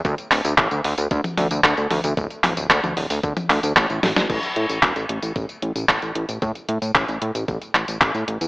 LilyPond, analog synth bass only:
\new Staff \with { instrumentName = "Analog synth bass" } { \clef bass \time 4/4 \key d \lydian \tempo 4 = 113 d,16 r16 d,,16 d,16 a,,16 d,16 d,16 d,16 d,16 r16 d,16 d,16 d,16 d,16 d,16 d,16 | d,,16 r16 d,,16 d,,16 d,16 d,16 d,,16 d,16 d,16 r16 d,16 d,16 a,,16 a,,16 a,,16 a,,16 | a,,16 r16 a,16 a,,16 e,,16 a,,16 a,,16 a,,16 a,,16 r16 a,,16 a,,16 a,,16 a,,16 a,,16 a,,16 | a,16 r16 a,16 a,16 a,,16 a,,16 a,16 a,,16 a,,16 r16 a,,16 a,,16 a,,16 a,16 a,,16 e,16 | }